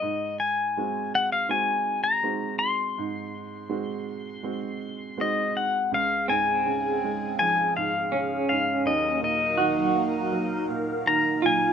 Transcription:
<<
  \new Staff \with { instrumentName = "Pedal steel guitar" } { \time 4/4 \key des \major \tempo 4 = 82 ees''8 aes''4 ges''16 f''16 aes''8. bes''8. c'''8~ | c'''2. ees''8 ges''8 | f''8 aes''4. aes''8 f''4 f''8 | ees''8 ees''2 r8 bes''8 aes''8 | }
  \new Staff \with { instrumentName = "Analog synth pad" } { \time 4/4 \key des \major << { r1 | r1 | f''1~ | f''1 | } \\ { r1 | r1 | aes'1 | <ges bes ees' bes'>1 | } >> }
  \new Staff \with { instrumentName = "Clean electric guitar" } { \time 4/4 \key des \major r1 | r1 | r8 c'2~ c'8 des'4~ | des'8 r8 ges'2~ ges'8 f'8 | }
  \new Staff \with { instrumentName = "Upright piano" } { \clef bass \time 4/4 \key des \major aes,4 <aes c' ges'>4 <aes c' ges'>4 <aes c' ges'>4 | aes,4 <aes c' ges'>4 <aes c' ges'>4 <aes c' ges'>4 | des,8 aes,8 des8 aes8 f8 aes,8 des8 aes,8 | ees,8 bes,8 ees8 bes8 ges8 bes,8 ees8 bes,8 | }
>>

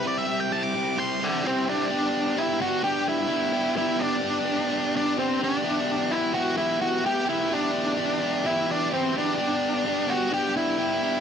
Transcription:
<<
  \new Staff \with { instrumentName = "Lead electric guitar" } { \time 4/4 \key g \major \tempo 4 = 128 << { d''16 e''8 g''16 a''16 d'''8. c'''2 | r1 | r1 | r1 |
r1 | r1 | } \\ { r2 r8 d'8 c'8 d'8~ | d'4 e'8 fis'8 g'8 e'4. | e'8 d'2 d'8 c'8 d'8~ | d'4 e'8 fis'8 e'8 fis'8 g'8 e'8 |
d'2 e'8 d'8 c'8 d'8~ | d'4. fis'8 g'8 e'4. | } >> }
  \new Staff \with { instrumentName = "Overdriven electric guitar" } { \time 4/4 \key g \major <g c' e' g'>8 <c' e' g'>8 <g c' e' g'>8 <c' e' g'>8 <g c' e' g'>8 <c' e' g'>8 <g c' e' g'>4 | <b d' g'>4 <b d' g'>8 <b d' g'>8 <b d' g'>4 <b d' g'>8 <b d' g'>8 | <b d' g'>4 <b d' g'>8 <b d' g'>8 <b d' g'>4 <b d' g'>8 <b d' g'>8 | <e b e' g'>4 <e b e' g'>8 <e b e' g'>8 <e b e' g'>4 <e b e' g'>8 <e b e' g'>8 |
<e b e' g'>4 <e b e' g'>8 <e b e' g'>8 <e b e' g'>4 <e b e' g'>8 <e b e' g'>8 | <b d' g'>4 <b d' g'>8 <b d' g'>8 <b d' g'>4 <b d' g'>8 <b d' g'>8 | }
>>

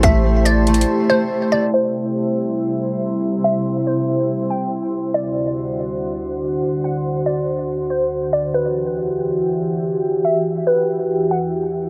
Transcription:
<<
  \new Staff \with { instrumentName = "Synth pluck" } { \time 4/4 \key c \lydian \tempo 4 = 141 e''4 d''4. c''4 d''8 | c''4 r2. | e''4 c''4. g''8 r4 | d''4 r2. |
fis''4 d''4. c''4 d''8 | b'4 r2. | e''4 b'4. fis''8 r4 | }
  \new Staff \with { instrumentName = "Ambient pad" } { \time 4/4 \key c \lydian << { <a e' c''>1 | <c g c''>1~ | <c g c''>1 | <d, d c''>1~ |
<d, d c''>1 | <e, e g'>1~ | <e, e g'>1 | } \\ { g'1 | e'1~ | e'1 | fis'1~ |
fis'1~ | fis'1~ | fis'1 | } >> }
  \new Staff \with { instrumentName = "Harp" } { \time 4/4 \key c \lydian a8 a4 a4 a4 a8 | r1 | r1 | r1 |
r1 | r1 | r1 | }
  \new Staff \with { instrumentName = "808-style bass" } { \clef bass \time 4/4 \key c \lydian a,,2 r2 | r1 | r1 | r1 |
r1 | r1 | r1 | }
  \new DrumStaff \with { instrumentName = "Drums" } \drummode { \time 4/4 <hh bd>4 \tuplet 3/2 { hh16 r16 r16 <hh hho>16 hh16 hh16 } r4 r4 | r4 r4 r4 r4 | r4 r4 r4 r4 | r4 r4 r4 r4 |
r4 r4 r4 r4 | r4 r4 r4 r4 | r4 r4 r4 r4 | }
>>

